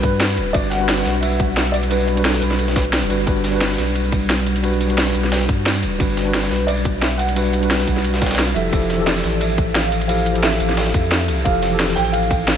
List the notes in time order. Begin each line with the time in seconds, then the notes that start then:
Already playing: G3 D4 F#4 B4
0.02 G2 B4, kick, closed hi-hat, ride, cabasa
0.20 snare, closed hi-hat, ride
0.37 D1, closed hi-hat, ride, cabasa
0.53 G1 G3 D4 F#4 B4 D5, kick, closed hi-hat, ride
0.64 cabasa
0.70 F#5, snare, closed hi-hat, ride, cabasa
0.78 G3 D4 F#4
0.83 B4
0.89 snare, closed hi-hat, ride
0.98 snare, cabasa
1.06 B1, snare, closed hi-hat, ride, cabasa
1.21 E5, closed hi-hat, ride
1.32 cabasa
1.40 kick, closed hi-hat, ride, cabasa
1.57 snare, closed hi-hat, open hi-hat
1.72 D5, closed hi-hat, ride, cabasa
1.83 ride
1.89 G3 D4 F#4 B4, closed hi-hat, ride
2.00 cabasa
2.08 closed hi-hat, ride, cabasa
2.14 G3 D4 F#4, ride
2.20 A4 B4
2.25 snare, closed hi-hat, ride
2.34 snare, cabasa
2.40 B1 B4, closed hi-hat, ride, cabasa
2.51 snare
2.59 closed hi-hat, ride
2.68 snare, cabasa
2.76 kick, snare, closed hi-hat, ride, cabasa
2.93 snare, closed hi-hat, ride
3.02 D1
3.09 G1 G3 D4 F#4 B4, closed hi-hat, ride, cabasa
3.26 G1 G3 D4 F#4 B4, kick, closed hi-hat, ride
3.36 cabasa
3.44 snare, closed hi-hat, ride, cabasa
3.51 G3 D4 F#4
3.56 B4
3.61 snare, closed hi-hat, ride
3.70 snare, cabasa
3.78 B1, snare, closed hi-hat, ride, cabasa
3.95 closed hi-hat, ride
4.05 cabasa
4.12 kick, closed hi-hat, ride, cabasa
4.29 snare, closed hi-hat, open hi-hat
4.46 closed hi-hat, ride, cabasa
4.56 ride
4.62 G3 D4 F#4 B4, closed hi-hat, ride
4.73 cabasa
4.81 closed hi-hat, ride, cabasa
4.87 G3 D4 F#4, ride
4.93 B4
4.98 snare, closed hi-hat, ride
5.07 snare, cabasa
5.15 B1, closed hi-hat, ride, cabasa
5.24 snare
5.32 snare, closed hi-hat, ride
5.41 snare, cabasa
5.49 G2, kick, closed hi-hat, ride, cabasa
5.66 snare, closed hi-hat, ride
5.83 D1, closed hi-hat, ride, cabasa
5.99 G1 G3 D4 F#4 B4, kick, closed hi-hat, ride
6.09 cabasa
6.17 snare, closed hi-hat, ride, cabasa
6.23 G3 D4 F#4
6.28 B4
6.34 snare, closed hi-hat, ride
6.43 snare, cabasa
6.50 B1 B4, snare, closed hi-hat, ride, cabasa
6.67 D5, closed hi-hat, ride
6.77 cabasa
6.85 kick, closed hi-hat, ride, cabasa
7.00 E5, snare, closed hi-hat, open hi-hat
7.18 F#5, closed hi-hat, ride, cabasa
7.28 ride
7.35 G3 D4 F#4 B4, closed hi-hat, ride
7.46 cabasa
7.53 closed hi-hat, ride, cabasa
7.60 G3 D4 F#4, ride
7.65 B4
7.70 snare, closed hi-hat, ride
7.80 snare, cabasa
7.88 B1, kick, closed hi-hat, ride, cabasa
7.97 snare
8.05 closed hi-hat, ride, swell
8.14 snare, cabasa
8.22 kick, snare, closed hi-hat, ride, cabasa
8.26 snare, ride
8.31 snare, ride
8.35 snare, ride
8.39 snare, closed hi-hat, ride
8.48 cabasa
8.54 F1 F3 E4 G4 A4 E5, closed hi-hat, ride, cabasa
8.71 F1 F3 E4 G4 A4, kick, closed hi-hat, ride
8.82 cabasa
8.90 snare, closed hi-hat, ride, cabasa
8.96 E3 F3 G4
9.02 A4
9.06 D5, snare, closed hi-hat, ride
9.16 snare, cabasa
9.24 A1, snare, closed hi-hat, ride, cabasa
9.40 E5, closed hi-hat, ride
9.50 cabasa
9.58 kick, closed hi-hat, ride, cabasa
9.74 F5, snare, closed hi-hat, open hi-hat
9.92 closed hi-hat, ride, cabasa
10.01 ride
10.08 F3 E4 G4 A4 F5, closed hi-hat, ride
10.18 cabasa
10.26 closed hi-hat, ride, cabasa
10.33 F3 E4 G4, ride
10.38 A4
10.42 E5, snare, closed hi-hat, ride
10.52 snare, cabasa
10.60 A1, closed hi-hat, ride, cabasa
10.69 snare
10.77 snare, closed hi-hat, ride
10.86 snare, cabasa
10.94 F2, kick, closed hi-hat, ride, cabasa
11.11 snare, closed hi-hat, ride
11.28 C2, closed hi-hat, ride, cabasa
11.44 F1 F3 E4 G4 A4 F5, kick, closed hi-hat, ride
11.55 cabasa
11.63 snare, closed hi-hat, ride, cabasa
11.69 E3 F3 G4
11.74 A4
11.79 snare, closed hi-hat, ride
11.89 snare, cabasa
11.95 A1 G5, snare, closed hi-hat, ride, cabasa
12.13 F5, closed hi-hat, ride
12.23 cabasa
12.31 kick, closed hi-hat, ride, cabasa
12.48 snare, closed hi-hat, open hi-hat